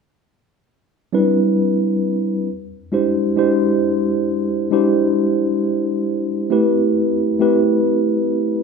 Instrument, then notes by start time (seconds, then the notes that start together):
tine electric piano
1.13 G3 C4 D4 E4 B4
2.92 G#3 D4 E4 G4 C5
3.36 G#3 D4 E4 G4 C5
4.71 G#3 D4 E4 G4 C5
6.50 A3 C4 E4 G4 B4
7.40 A3 C4 E4 G4 B4